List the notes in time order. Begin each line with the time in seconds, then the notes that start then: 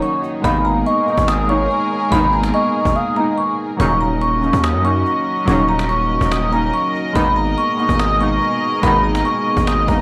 Already playing: D#3 F#3 A#3 C#4 D#4 F#4 C#5
0.02 C#6, cajon slap
0.23 cajon slap
0.42 G#1 D#2 B2 D#3 G#3 A#3 B3 G#4 A#4 F5 B5, cajon bass
0.47 D#4
0.65 A#5, cajon slap
0.86 D#5 C#6, cajon slap
1.05 G#3 A#3 B3, cajon slap
1.10 D#4
1.18 G#1, cajon bass
1.28 D#6, cajon slap
1.46 G#3 A#3 B3 C#5 C#6, cajon slap
1.52 D#4
1.70 cajon slap
2.10 G#1 D#2 B2 D#3 G#3 A#3 B3 B5, cajon bass
2.15 D#4
2.33 A#5
2.43 cajon slap
2.54 D#5 C#6, cajon slap
2.85 G#1, cajon bass
2.96 F5 D#6
3.15 G#3 A#3 B3 D#5 A#5
3.20 D#4
3.38 C#6
3.77 D#1 C#3 D#3 F#3 A#3 C#4 F#4 A#4 D#5 C#6, cajon bass
3.82 D#4
4.01 A#5, cajon slap
4.22 C#6, cajon slap
4.41 F#3 A#3 C#4, cajon slap
4.46 D#4
4.53 D#2, cajon bass
4.64 D#6, cajon slap
4.74 F#2
4.82 F#3 A#3 C#4 C#6, cajon slap
4.87 D#4
5.06 cajon slap
5.45 D#1 C#3 D#3 F#3 A#3 C#4 C#6, cajon bass
5.50 D#4
5.69 A#5
5.79 cajon slap
5.89 C#6, cajon slap
6.21 D#1, cajon bass
6.31 D#6, cajon slap
6.50 F#3 A#3 C#4 A#5, cajon slap
6.55 D#4
6.73 C#6, cajon slap
6.95 cajon slap
7.13 G#1 D#2 B2 D#3 G#3 A#3 B3 G#4 B5, cajon bass
7.18 D#4
7.36 A#5, cajon slap
7.58 C#6, cajon slap
7.76 G#3 A#3 B3, cajon slap
7.81 D#4
7.89 G#1, cajon bass
7.99 D#6, cajon slap
8.18 G#3 A#3 B3 C#6, cajon slap
8.23 D#4
8.41 cajon slap
8.82 G#1 D#2 B2 D#3 G#3 A#3 B3 B5, cajon bass
8.87 D#4
9.04 A#5
9.15 cajon slap
9.25 C#6, cajon slap
9.57 G#1, cajon bass
9.67 D#6, cajon slap
9.86 G#1 G#3 A#3 B3 A#5, cajon bass, cajon slap
9.91 D#4